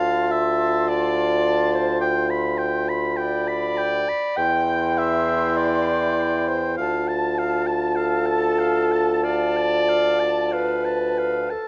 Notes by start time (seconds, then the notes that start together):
Already playing: D2 F4 F5 A5 C6
0.28 E5 A5
0.58 A5
0.86 D5 A5
1.16 A5
1.45 A5
1.73 C5 A5
2.01 G5
2.30 B5
2.58 G5
2.89 B5
3.17 D5 G5 B5
3.48 B5
3.77 G5
4.08 B5
4.37 E2 E4 G5 C6
4.66 G5
4.95 E5 G5
5.25 G5
5.55 D5 G5
5.87 G5
6.16 G5
6.48 C5 G5
6.77 D2 F4 F5 A5
7.08 A5
7.38 F5
7.67 A5
7.96 A4 F5
8.26 A5
8.59 F5
8.92 A5
9.24 D5 F5
9.57 A5
9.89 F5
10.20 A5
10.52 B4 F5
10.85 A5
11.18 F5
11.50 A4 A5